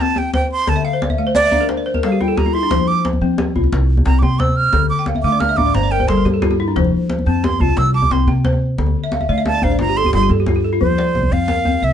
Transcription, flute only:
0, 0, Header, 1, 2, 480
1, 0, Start_track
1, 0, Key_signature, -1, "major"
1, 0, Tempo, 337838
1, 959, Time_signature, 12, 3, 24, 8
1, 16953, End_track
2, 0, Start_track
2, 0, Title_t, "Flute"
2, 0, Program_c, 0, 73
2, 23, Note_on_c, 0, 81, 105
2, 258, Note_on_c, 0, 79, 91
2, 279, Note_off_c, 0, 81, 0
2, 481, Note_off_c, 0, 79, 0
2, 490, Note_on_c, 0, 79, 98
2, 708, Note_off_c, 0, 79, 0
2, 734, Note_on_c, 0, 84, 95
2, 979, Note_on_c, 0, 81, 96
2, 1000, Note_off_c, 0, 84, 0
2, 1203, Note_on_c, 0, 77, 86
2, 1225, Note_off_c, 0, 81, 0
2, 1442, Note_off_c, 0, 77, 0
2, 1923, Note_on_c, 0, 74, 115
2, 2370, Note_off_c, 0, 74, 0
2, 2904, Note_on_c, 0, 77, 80
2, 3149, Note_on_c, 0, 79, 76
2, 3170, Note_off_c, 0, 77, 0
2, 3369, Note_on_c, 0, 82, 90
2, 3391, Note_off_c, 0, 79, 0
2, 3602, Note_on_c, 0, 84, 105
2, 3623, Note_off_c, 0, 82, 0
2, 4086, Note_on_c, 0, 86, 92
2, 4107, Note_off_c, 0, 84, 0
2, 4326, Note_off_c, 0, 86, 0
2, 5771, Note_on_c, 0, 82, 89
2, 5950, Note_on_c, 0, 86, 62
2, 5971, Note_off_c, 0, 82, 0
2, 6006, Note_on_c, 0, 84, 90
2, 6027, Note_off_c, 0, 86, 0
2, 6244, Note_on_c, 0, 88, 97
2, 6265, Note_off_c, 0, 84, 0
2, 6483, Note_on_c, 0, 89, 114
2, 6505, Note_off_c, 0, 88, 0
2, 6947, Note_off_c, 0, 89, 0
2, 6955, Note_on_c, 0, 86, 94
2, 7184, Note_off_c, 0, 86, 0
2, 7430, Note_on_c, 0, 86, 91
2, 7673, Note_on_c, 0, 89, 89
2, 7694, Note_off_c, 0, 86, 0
2, 7911, Note_on_c, 0, 86, 100
2, 7932, Note_off_c, 0, 89, 0
2, 8163, Note_on_c, 0, 82, 89
2, 8184, Note_off_c, 0, 86, 0
2, 8402, Note_on_c, 0, 79, 83
2, 8424, Note_off_c, 0, 82, 0
2, 8641, Note_on_c, 0, 84, 79
2, 8662, Note_off_c, 0, 79, 0
2, 8883, Note_off_c, 0, 84, 0
2, 10331, Note_on_c, 0, 81, 76
2, 10571, Note_on_c, 0, 84, 92
2, 10593, Note_off_c, 0, 81, 0
2, 10810, Note_on_c, 0, 81, 93
2, 10831, Note_off_c, 0, 84, 0
2, 11051, Note_on_c, 0, 88, 103
2, 11072, Note_off_c, 0, 81, 0
2, 11276, Note_off_c, 0, 88, 0
2, 11285, Note_on_c, 0, 86, 88
2, 11536, Note_on_c, 0, 84, 81
2, 11557, Note_off_c, 0, 86, 0
2, 11768, Note_off_c, 0, 84, 0
2, 13204, Note_on_c, 0, 77, 72
2, 13425, Note_off_c, 0, 77, 0
2, 13451, Note_on_c, 0, 81, 89
2, 13687, Note_on_c, 0, 77, 88
2, 13708, Note_off_c, 0, 81, 0
2, 13922, Note_off_c, 0, 77, 0
2, 13937, Note_on_c, 0, 82, 88
2, 14164, Note_on_c, 0, 84, 99
2, 14186, Note_off_c, 0, 82, 0
2, 14401, Note_off_c, 0, 84, 0
2, 14412, Note_on_c, 0, 84, 97
2, 14628, Note_off_c, 0, 84, 0
2, 15364, Note_on_c, 0, 72, 86
2, 16090, Note_on_c, 0, 77, 85
2, 16112, Note_off_c, 0, 72, 0
2, 16822, Note_on_c, 0, 76, 94
2, 16843, Note_off_c, 0, 77, 0
2, 16953, Note_off_c, 0, 76, 0
2, 16953, End_track
0, 0, End_of_file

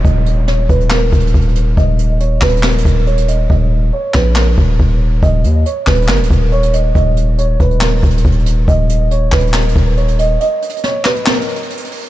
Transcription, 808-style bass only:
0, 0, Header, 1, 2, 480
1, 0, Start_track
1, 0, Tempo, 431655
1, 51, Time_signature, 4, 2, 24, 8
1, 13447, End_track
2, 0, Start_track
2, 0, Title_t, "808-style bass"
2, 0, Program_c, 0, 38
2, 51, Note_on_c, 0, 27, 112
2, 742, Note_off_c, 0, 27, 0
2, 771, Note_on_c, 0, 27, 104
2, 1232, Note_off_c, 0, 27, 0
2, 1250, Note_on_c, 0, 27, 106
2, 1481, Note_off_c, 0, 27, 0
2, 1492, Note_on_c, 0, 27, 109
2, 1952, Note_off_c, 0, 27, 0
2, 1971, Note_on_c, 0, 27, 111
2, 2663, Note_off_c, 0, 27, 0
2, 2691, Note_on_c, 0, 27, 102
2, 3152, Note_off_c, 0, 27, 0
2, 3171, Note_on_c, 0, 27, 105
2, 3862, Note_off_c, 0, 27, 0
2, 3891, Note_on_c, 0, 27, 113
2, 4352, Note_off_c, 0, 27, 0
2, 4611, Note_on_c, 0, 34, 105
2, 5072, Note_off_c, 0, 34, 0
2, 5090, Note_on_c, 0, 27, 104
2, 5321, Note_off_c, 0, 27, 0
2, 5332, Note_on_c, 0, 27, 107
2, 5792, Note_off_c, 0, 27, 0
2, 5811, Note_on_c, 0, 27, 109
2, 6051, Note_on_c, 0, 39, 101
2, 6067, Note_off_c, 0, 27, 0
2, 6279, Note_off_c, 0, 39, 0
2, 6531, Note_on_c, 0, 27, 107
2, 6771, Note_on_c, 0, 30, 102
2, 6788, Note_off_c, 0, 27, 0
2, 6891, Note_on_c, 0, 27, 95
2, 6908, Note_off_c, 0, 30, 0
2, 7005, Note_off_c, 0, 27, 0
2, 7010, Note_on_c, 0, 27, 107
2, 7702, Note_off_c, 0, 27, 0
2, 7731, Note_on_c, 0, 27, 116
2, 8422, Note_off_c, 0, 27, 0
2, 8451, Note_on_c, 0, 27, 100
2, 8912, Note_off_c, 0, 27, 0
2, 8930, Note_on_c, 0, 27, 105
2, 9161, Note_off_c, 0, 27, 0
2, 9171, Note_on_c, 0, 27, 113
2, 9632, Note_off_c, 0, 27, 0
2, 9651, Note_on_c, 0, 27, 114
2, 10342, Note_off_c, 0, 27, 0
2, 10371, Note_on_c, 0, 27, 105
2, 10832, Note_off_c, 0, 27, 0
2, 10850, Note_on_c, 0, 27, 103
2, 11542, Note_off_c, 0, 27, 0
2, 13447, End_track
0, 0, End_of_file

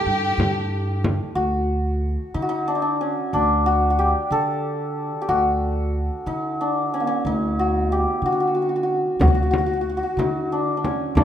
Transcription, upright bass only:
0, 0, Header, 1, 2, 480
1, 0, Start_track
1, 0, Tempo, 653239
1, 1004, Time_signature, 6, 3, 24, 8
1, 8259, End_track
2, 0, Start_track
2, 0, Title_t, "Upright bass"
2, 0, Program_c, 0, 32
2, 42, Note_on_c, 0, 43, 82
2, 238, Note_off_c, 0, 43, 0
2, 277, Note_on_c, 0, 43, 91
2, 864, Note_off_c, 0, 43, 0
2, 996, Note_on_c, 0, 38, 83
2, 1584, Note_off_c, 0, 38, 0
2, 1724, Note_on_c, 0, 50, 76
2, 2309, Note_off_c, 0, 50, 0
2, 2447, Note_on_c, 0, 38, 91
2, 3031, Note_off_c, 0, 38, 0
2, 3163, Note_on_c, 0, 50, 86
2, 3748, Note_off_c, 0, 50, 0
2, 3885, Note_on_c, 0, 38, 91
2, 4469, Note_off_c, 0, 38, 0
2, 4602, Note_on_c, 0, 50, 82
2, 5187, Note_off_c, 0, 50, 0
2, 5325, Note_on_c, 0, 38, 87
2, 5909, Note_off_c, 0, 38, 0
2, 6038, Note_on_c, 0, 50, 82
2, 6625, Note_off_c, 0, 50, 0
2, 6756, Note_on_c, 0, 38, 88
2, 7344, Note_off_c, 0, 38, 0
2, 7471, Note_on_c, 0, 50, 85
2, 8061, Note_off_c, 0, 50, 0
2, 8194, Note_on_c, 0, 38, 92
2, 8259, Note_off_c, 0, 38, 0
2, 8259, End_track
0, 0, End_of_file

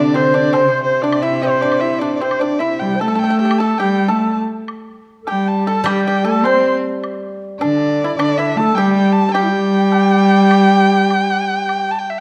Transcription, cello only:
0, 0, Header, 1, 2, 480
1, 0, Start_track
1, 0, Tempo, 588813
1, 923, Time_signature, 4, 2, 24, 8
1, 4776, Tempo, 580271
1, 8616, Tempo, 594059
1, 9991, End_track
2, 0, Start_track
2, 0, Title_t, "Cello"
2, 0, Program_c, 0, 42
2, 0, Note_on_c, 0, 50, 76
2, 449, Note_on_c, 0, 48, 85
2, 461, Note_off_c, 0, 50, 0
2, 2290, Note_on_c, 0, 55, 77
2, 2302, Note_off_c, 0, 48, 0
2, 2452, Note_off_c, 0, 55, 0
2, 2456, Note_on_c, 0, 57, 77
2, 3067, Note_off_c, 0, 57, 0
2, 3102, Note_on_c, 0, 55, 78
2, 3337, Note_on_c, 0, 57, 73
2, 3349, Note_off_c, 0, 55, 0
2, 3577, Note_off_c, 0, 57, 0
2, 4302, Note_on_c, 0, 55, 71
2, 4745, Note_off_c, 0, 55, 0
2, 4770, Note_on_c, 0, 55, 69
2, 5096, Note_on_c, 0, 57, 74
2, 5108, Note_off_c, 0, 55, 0
2, 5258, Note_on_c, 0, 60, 84
2, 5271, Note_off_c, 0, 57, 0
2, 5498, Note_off_c, 0, 60, 0
2, 6218, Note_on_c, 0, 50, 72
2, 6665, Note_off_c, 0, 50, 0
2, 6699, Note_on_c, 0, 50, 76
2, 7009, Note_on_c, 0, 57, 85
2, 7021, Note_off_c, 0, 50, 0
2, 7169, Note_off_c, 0, 57, 0
2, 7174, Note_on_c, 0, 55, 91
2, 7619, Note_off_c, 0, 55, 0
2, 7656, Note_on_c, 0, 55, 91
2, 9724, Note_off_c, 0, 55, 0
2, 9991, End_track
0, 0, End_of_file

